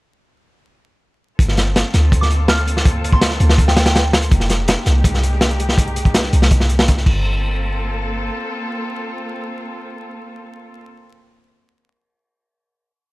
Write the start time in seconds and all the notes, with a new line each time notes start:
1.39 G1 A#3 C4 F4 A4, kick, closed hi-hat
1.48 snare
1.57 snare, closed hi-hat
1.76 snare, closed hi-hat
1.94 D2, snare, closed hi-hat
2.12 kick, closed hi-hat
2.21 D6, snare
2.31 closed hi-hat
2.48 F6, snare, closed hi-hat
2.58 F6, closed hi-hat
2.67 closed hi-hat
2.77 snare
2.85 kick, closed hi-hat
3.04 closed hi-hat
3.12 C6, kick
3.21 snare, closed hi-hat
3.31 snare
3.40 D2, closed hi-hat
3.49 snare
3.58 kick, closed hi-hat
3.68 G5, snare
3.77 G5, snare, closed hi-hat
3.86 G5, snare, closed hi-hat
3.95 G5, snare, closed hi-hat
4.13 snare, closed hi-hat
4.22 closed hi-hat
4.31 F1 G#3 D#4 G4, kick, closed hi-hat
4.40 snare, closed hi-hat
4.50 snare, closed hi-hat
4.68 snare, closed hi-hat
4.86 C2, snare, closed hi-hat
5.04 kick, closed hi-hat
5.14 snare
5.23 closed hi-hat
5.33 snare
5.41 snare, closed hi-hat
5.51 closed hi-hat
5.60 closed hi-hat
5.69 snare
5.78 kick, closed hi-hat
5.88 closed hi-hat
5.96 closed hi-hat
6.05 kick, closed hi-hat
6.14 snare, closed hi-hat
6.24 snare
6.33 C2, closed hi-hat
6.42 snare
6.51 kick, closed hi-hat
6.60 snare
6.69 closed hi-hat
6.79 snare, closed hi-hat
6.88 kick, snare, closed hi-hat
6.97 snare
7.06 G1 A#3 C4 F4 A4, kick, crash